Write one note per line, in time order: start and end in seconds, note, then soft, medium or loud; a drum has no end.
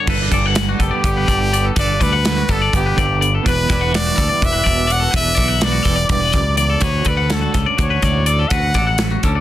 0.00 0.53 D3 medium
0.07 0.28 G1 medium
0.07 1.73 G2 medium
0.07 0.32 A4 medium
0.07 0.33 B4 medium
0.07 kick loud
0.07 crash loud
0.32 0.73 G1 medium
0.32 1.73 A4 medium
0.32 0.46 D5 medium
0.32 kick medium
0.32 closed hi-hat medium
0.46 0.69 F#5 medium
0.54 1.26 D3 medium
0.54 snare medium
0.54 closed hi-hat medium
0.69 0.80 F#4 medium
0.79 0.90 F#1 medium
0.79 1.04 B3 medium
0.79 1.73 G4 medium
0.79 0.92 A4 medium
0.79 kick medium
0.79 closed hi-hat medium
0.91 1.15 D5 medium
1.04 1.25 G1 medium
1.04 1.52 B3 medium
1.04 kick medium
1.04 closed hi-hat medium
1.17 1.29 B4 medium
1.27 1.69 G1 medium
1.27 1.73 D3 medium
1.27 1.52 D5 medium
1.27 kick medium
1.27 closed hi-hat medium
1.53 1.79 B3 medium
1.53 1.65 D5 medium
1.53 closed hi-hat medium
1.65 1.76 A4 medium
1.76 1.97 G1 medium
1.76 3.41 G2 medium
1.76 1.98 A4 medium
1.76 2.00 B4 medium
1.76 2.04 D5 medium
1.76 kick loud
1.76 closed hi-hat medium
1.99 2.42 D2 medium
1.99 3.41 A4 medium
1.99 2.52 B4 medium
1.99 2.12 D5 medium
1.99 kick medium
1.99 closed hi-hat medium
2.13 2.36 F#5 medium
2.25 2.94 D3 medium
2.25 snare loud
2.25 closed hi-hat medium
2.37 2.49 F#4 medium
2.49 2.69 G1 medium
2.49 2.73 B3 medium
2.49 2.61 A4 medium
2.49 2.74 A4 medium
2.49 kick medium
2.49 closed hi-hat medium
2.62 2.85 D5 medium
2.73 2.94 G1 loud
2.73 3.20 B3 medium
2.73 3.24 G4 medium
2.73 kick medium
2.73 closed hi-hat medium
2.86 2.97 B4 medium
2.96 3.38 G1 loud
2.96 3.41 D3 medium
2.96 3.20 D5 medium
2.96 kick medium
2.96 closed hi-hat medium
3.21 4.17 B3 soft
3.21 3.33 D5 medium
3.21 closed hi-hat medium
3.35 3.46 A4 medium
3.44 3.66 E1 medium
3.44 5.10 E2 medium
3.44 4.42 D4 medium
3.44 3.71 B4 medium
3.44 3.91 B4 loud
3.44 kick medium
3.44 closed hi-hat medium
3.69 4.11 E1 medium
3.69 3.79 E4 medium
3.69 3.82 D5 medium
3.69 kick medium
3.69 snare soft
3.69 closed hi-hat medium
3.79 4.88 F#4 medium
3.79 4.05 F#5 medium
3.92 5.17 E3 medium
3.92 4.46 D5 loud
3.92 snare loud
3.92 closed hi-hat medium
4.06 4.16 F#4 medium
4.16 4.28 D2 medium
4.16 5.84 G3 medium
4.16 4.28 A4 medium
4.16 kick medium
4.16 snare soft
4.16 closed hi-hat medium
4.29 4.53 D5 medium
4.42 4.62 E1 medium
4.42 5.13 D4 medium
4.42 4.93 E5 loud
4.42 kick loud
4.42 closed hi-hat medium
4.53 4.65 B4 medium
4.64 5.07 E1 medium
4.64 5.10 B2 medium
4.64 4.86 D5 medium
4.64 kick medium
4.64 closed hi-hat medium
4.87 5.16 F#4 medium
4.87 5.00 D5 medium
4.87 closed hi-hat medium
4.92 5.15 F#5 medium
5.00 5.11 A4 medium
5.11 5.34 E1 medium
5.11 6.81 D4 medium
5.11 5.36 B4 medium
5.11 kick loud
5.11 closed hi-hat medium
5.16 5.65 E5 loud
5.35 5.79 B1 loud
5.35 6.81 F#4 medium
5.35 5.48 D5 medium
5.35 kick medium
5.35 closed hi-hat medium
5.48 5.73 F#5 medium
5.61 6.83 E3 medium
5.61 6.10 D5 loud
5.61 snare loud
5.61 closed hi-hat medium
5.72 5.83 F#4 medium
5.83 6.06 E1 medium
5.83 6.82 G3 soft
5.83 5.96 A4 medium
5.83 kick medium
5.83 closed hi-hat medium
5.96 6.20 D5 medium
6.09 6.30 E1 medium
6.09 6.33 G2 medium
6.09 6.55 D5 medium
6.09 kick medium
6.09 closed hi-hat medium
6.20 6.32 B4 medium
6.32 6.75 C#2 loud
6.32 6.56 F#2 medium
6.32 6.56 D5 medium
6.32 kick medium
6.32 snare soft
6.32 closed hi-hat medium
6.57 6.80 E2 medium
6.57 6.69 D5 medium
6.57 6.85 D5 medium
6.57 closed hi-hat medium
6.70 6.81 A4 medium
6.80 8.50 D2 medium
6.80 7.02 D2 medium
6.80 7.77 F#4 medium
6.80 7.06 B4 medium
6.80 7.09 C#5 medium
6.80 kick loud
6.80 closed hi-hat medium
7.05 7.47 D2 medium
7.05 8.27 A4 medium
7.05 7.34 B4 medium
7.05 7.17 D5 medium
7.05 kick medium
7.05 closed hi-hat medium
7.17 7.42 F#5 medium
7.30 8.98 D3 medium
7.30 7.55 A4 medium
7.30 snare loud
7.30 closed hi-hat medium
7.42 7.54 F#4 medium
7.54 7.65 C#2 medium
7.54 9.23 C#4 medium
7.54 7.66 A4 medium
7.54 kick medium
7.54 snare soft
7.54 closed hi-hat medium
7.66 7.90 D5 medium
7.77 7.99 D2 medium
7.77 8.52 F#4 medium
7.77 kick medium
7.77 closed hi-hat medium
7.82 8.25 C#5 medium
7.90 8.02 B4 medium
8.02 8.44 D2 medium
8.02 8.50 A2 medium
8.02 8.25 D5 medium
8.02 kick medium
8.02 snare soft
8.02 closed hi-hat medium
8.26 8.77 A4 medium
8.26 8.38 D5 medium
8.26 8.50 D5 medium
8.26 closed hi-hat medium
8.39 8.51 A4 medium
8.48 8.71 D2 medium
8.48 8.74 B4 medium
8.48 9.04 F#5 loud
8.48 kick loud
8.48 closed hi-hat medium
8.52 9.40 F#4 medium
8.74 9.16 A1 loud
8.74 9.40 A4 medium
8.74 8.87 D5 medium
8.74 kick medium
8.74 snare soft
8.74 closed hi-hat medium
8.87 9.11 F#5 medium
8.98 snare loud
8.98 closed hi-hat medium
9.11 9.23 F#4 medium
9.23 9.40 D2 medium
9.23 9.40 C#4 medium
9.23 9.36 A4 medium
9.23 kick medium
9.23 closed hi-hat medium
9.35 9.40 D5 medium